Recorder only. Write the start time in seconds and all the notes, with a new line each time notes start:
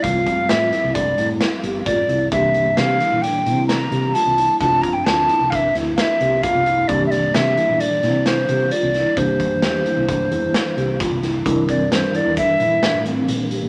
0.03 F5
0.49 E5
0.94 D5
1.86 D5
2.32 E5
2.77 F5
3.22 G5
3.67 A#5
4.14 A5
4.59 A5
4.82 A#5
4.93 G5
5.05 A5
5.50 F5
5.55 E5
5.96 F5
6.01 E5
6.42 F5
6.88 D5
7.06 E5
7.11 D5
7.34 E5
7.80 D5
8.26 C5
8.72 D5
9.17 C5
11.69 D5
11.93 C5
12.16 D5
12.38 E5